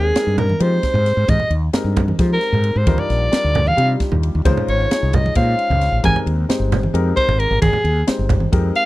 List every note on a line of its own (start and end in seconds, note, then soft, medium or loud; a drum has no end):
0.00 0.11 D#2 medium
0.00 0.11 G#3 medium
0.00 0.11 C4 medium
0.00 0.11 D#4 medium
0.00 0.11 G4 medium
0.00 0.35 G#4 medium
0.00 0.11 A#4 medium
0.15 0.56 G#3 medium
0.15 0.56 C4 medium
0.15 0.56 D#4 medium
0.15 0.56 G4 soft
0.15 0.56 A#4 medium
0.15 snare loud
0.15 ride medium
0.15 low conga soft
0.27 0.53 G2 medium
0.38 0.64 A#4 medium
0.38 ride medium
0.38 low conga medium
0.50 high conga medium
0.60 0.78 F3 medium
0.60 1.41 G#3 medium
0.60 1.41 C4 medium
0.60 1.41 D#4 medium
0.60 1.41 G4 medium
0.60 1.41 C5 medium
0.60 1.31 C5 medium
0.60 ride medium
0.83 kick medium
0.83 snare soft
0.83 ride medium
0.94 1.12 G#2 loud
0.94 low conga medium
1.06 snare soft
1.06 ride medium
1.17 1.26 G#2 medium
1.28 1.37 G#2 loud
1.28 1.52 D#5 medium
1.28 kick loud
1.28 ride medium
1.28 high conga medium
1.40 low conga medium
1.50 1.68 D#2 medium
1.50 ride medium
1.73 2.14 G#3 medium
1.73 2.14 C4 medium
1.73 2.14 D#4 medium
1.73 2.14 G4 medium
1.73 2.14 A#4 medium
1.73 snare loud
1.73 ride medium
1.73 low conga soft
1.84 2.11 G2 medium
1.96 kick medium
1.96 ride medium
1.96 low conga medium
2.08 high conga medium
2.19 2.37 F3 medium
2.19 2.87 G#3 medium
2.19 2.87 C4 medium
2.19 2.85 D#4 medium
2.19 2.87 G4 medium
2.19 2.87 C5 medium
2.19 kick loud
2.19 snare soft
2.19 ride medium
2.33 2.79 A#4 medium
2.41 snare soft
2.41 ride medium
2.53 2.70 G#2 medium
2.53 low conga medium
2.64 ride medium
2.76 2.84 G#2 loud
2.76 3.01 C5 medium
2.76 low conga soft
2.87 2.96 D#2 medium
2.87 3.27 G3 medium
2.87 3.27 D4 medium
2.87 3.27 D#4 medium
2.87 3.27 F4 medium
2.87 3.27 A#4 medium
2.87 kick loud
2.87 ride medium
2.87 high conga medium
2.98 3.69 D5 medium
2.98 low conga medium
3.10 3.27 A#1 medium
3.10 snare soft
3.10 ride medium
3.31 3.72 G3 medium
3.31 3.72 D4 medium
3.31 3.72 D#4 medium
3.31 3.72 F4 medium
3.31 3.72 A#4 medium
3.31 snare loud
3.31 ride medium
3.31 low conga soft
3.44 3.70 D2 medium
3.55 ride medium
3.55 low conga medium
3.67 3.90 F5 loud
3.67 high conga medium
3.77 3.95 C3 loud
3.77 4.45 G3 medium
3.77 4.45 D4 medium
3.77 4.44 D#4 medium
3.77 4.44 F4 medium
3.77 4.45 G4 medium
3.77 ride medium
4.00 kick medium
4.00 snare soft
4.00 ride medium
4.12 4.29 D#2 medium
4.12 low conga medium
4.23 ride medium
4.35 4.43 D#2 loud
4.35 low conga soft
4.45 4.54 C#2 medium
4.45 4.85 G#3 loud
4.45 4.85 C#4 medium
4.45 4.86 D#4 medium
4.45 4.86 F4 medium
4.45 4.86 C5 loud
4.45 kick loud
4.45 ride medium
4.45 high conga medium
4.57 low conga medium
4.68 4.86 G#1 medium
4.68 5.16 C#5 medium
4.68 ride medium
4.81 low conga soft
4.91 5.31 G#3 medium
4.91 5.31 C#4 medium
4.91 5.31 D#4 medium
4.91 5.31 F4 medium
4.91 5.31 G#4 medium
4.91 snare loud
4.91 ride medium
5.03 5.29 C2 medium
5.13 5.36 D#5 medium
5.13 kick medium
5.13 ride medium
5.13 low conga medium
5.26 high conga medium
5.35 5.54 A#2 medium
5.35 6.02 G#3 medium
5.35 6.04 C#4 medium
5.35 6.02 D#4 medium
5.35 6.04 F4 medium
5.35 6.04 C5 medium
5.35 6.00 F5 medium
5.35 kick loud
5.35 ride medium
5.48 low conga soft
5.59 ride medium
5.70 5.88 C#2 medium
5.70 low conga medium
5.81 snare soft
5.81 ride medium
5.81 low conga soft
5.92 6.01 A1 medium
6.03 6.13 G#1 loud
6.03 6.44 G#3 medium
6.03 6.44 C4 medium
6.03 6.44 D#4 medium
6.03 6.44 G4 medium
6.03 6.44 A#4 medium
6.03 6.18 G#5 medium
6.03 kick loud
6.03 ride medium
6.03 high conga loud
6.16 low conga medium
6.26 6.44 D#2 medium
6.26 ride medium
6.49 6.89 G#3 medium
6.49 6.89 C4 medium
6.49 6.89 D#4 medium
6.49 6.90 G4 medium
6.49 6.90 C5 medium
6.49 muted fretless electric bass stroke soft
6.49 snare loud
6.49 ride medium
6.49 low conga soft
6.60 6.86 G1 medium
6.72 snare soft
6.72 ride medium
6.72 low conga medium
6.83 high conga medium
6.94 7.12 F2 loud
6.94 7.75 G#3 medium
6.94 7.75 C4 medium
6.94 7.75 D#4 medium
6.94 7.75 G4 medium
6.94 7.75 A#4 loud
6.94 ride medium
7.17 7.41 C5 medium
7.17 kick medium
7.17 ride medium
7.28 7.46 G#1 medium
7.28 low conga medium
7.40 7.61 A#4 medium
7.40 ride medium
7.51 7.59 G#1 loud
7.51 low conga soft
7.62 7.71 G#1 loud
7.62 8.04 G#4 medium
7.62 kick loud
7.62 ride medium
7.62 high conga loud
7.73 low conga medium
7.84 8.02 D#2 medium
7.84 ride medium
8.07 8.48 G#3 medium
8.07 8.48 C4 medium
8.07 8.47 D#4 medium
8.07 8.48 G4 medium
8.07 8.48 C5 medium
8.07 muted fretless electric bass stroke soft
8.07 snare loud
8.07 ride loud
8.07 low conga soft
8.19 8.45 G1 medium
8.29 kick medium
8.29 ride medium
8.29 low conga medium
8.40 high conga medium
8.52 8.70 F2 medium
8.52 8.86 G#3 medium
8.52 8.86 C4 medium
8.52 8.86 D#4 medium
8.52 8.86 G4 medium
8.52 8.86 A#4 medium
8.52 kick loud
8.52 ride medium
8.75 8.86 F5 medium
8.75 ride medium